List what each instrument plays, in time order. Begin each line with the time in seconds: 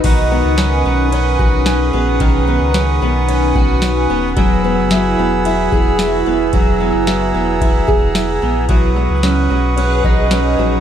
Already playing: twelve-string acoustic guitar B3 D#4 F#4
0.04 sub bass B1, twelve-string acoustic guitar D#3, accordion B4 F#5 C#6 D#6, kick, crash, ride
0.31 twelve-string acoustic guitar B3
0.45 sub bass C#2
0.58 twelve-string acoustic guitar C#4, synth texture G#4, snare, ride, tambourine
0.85 sub bass B1, twelve-string acoustic guitar B3
1.12 twelve-string acoustic guitar C#4, ride
1.39 sub bass B1, twelve-string acoustic guitar F#4, kick
1.66 twelve-string acoustic guitar C#4, snare, ride, tambourine
1.93 sub bass A#1, twelve-string acoustic guitar B3
2.20 sub bass B1, twelve-string acoustic guitar D#3, kick, ride
2.47 twelve-string acoustic guitar B3
2.61 sub bass C#2
2.74 twelve-string acoustic guitar C#4, snare, ride, tambourine
3.01 sub bass B1, twelve-string acoustic guitar B3
3.29 twelve-string acoustic guitar C#4, ride
3.55 sub bass B1, twelve-string acoustic guitar F#4, kick
3.82 twelve-string acoustic guitar C#4, snare, ride, tambourine
4.10 sub bass D#1, twelve-string acoustic guitar B3
4.36 sub bass E1, twelve-string acoustic guitar F#3, accordion G#4 B5 E6, kick, ride
4.64 twelve-string acoustic guitar B3
4.77 sub bass F#1
4.91 twelve-string acoustic guitar E4, snare, ride, tambourine
5.18 sub bass E1, twelve-string acoustic guitar B3
5.45 twelve-string acoustic guitar E4, synth texture F#4, ride
5.72 sub bass E1, twelve-string acoustic guitar G#4, kick
5.99 twelve-string acoustic guitar E4, snare, ride, tambourine
6.26 sub bass D#1, twelve-string acoustic guitar B3
6.53 sub bass E1, twelve-string acoustic guitar F#3, accordion A#5, kick, ride
6.80 twelve-string acoustic guitar B3
6.94 sub bass F#1
7.07 twelve-string acoustic guitar E4, snare, ride, tambourine
7.34 sub bass E1, twelve-string acoustic guitar B3
7.61 twelve-string acoustic guitar E4, kick, ride
7.88 sub bass E1, twelve-string acoustic guitar G#4, kick
8.15 twelve-string acoustic guitar E4, snare, ride, tambourine
8.42 sub bass A#1, twelve-string acoustic guitar B3
8.69 sub bass B1, twelve-string acoustic guitar F#3, synth texture G#4, accordion B4 F#5 C#6 D#6, kick, ride
8.89 synth texture B4
8.96 twelve-string acoustic guitar F#3
9.06 synth texture C#5
9.10 sub bass C#2
9.23 twelve-string acoustic guitar C#4, snare, ride, tambourine
9.50 sub bass B1, twelve-string acoustic guitar F#3
9.77 twelve-string acoustic guitar C#4, ride
10.04 sub bass B1, twelve-string acoustic guitar D#4, kick
10.31 twelve-string acoustic guitar C#4, snare, ride, tambourine
10.58 sub bass A#1, twelve-string acoustic guitar F#3